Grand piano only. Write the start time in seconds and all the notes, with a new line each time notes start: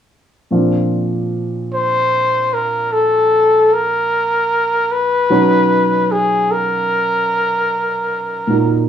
0.51 A#2 F3 C4 D4 F4
5.30 B2 F#3 C#4 D#4
8.47 A#2 D#4 F#4 A#4